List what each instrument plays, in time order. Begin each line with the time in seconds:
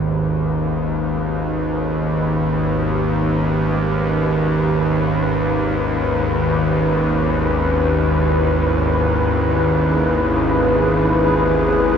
Already playing: synth drone G#1 D#2, analog synth pad C#4 D#4 G#4 B4, synth texture B4
1.53 analog synth pad G4
7.93 analog synth pad E4
9.39 analog synth pad G#4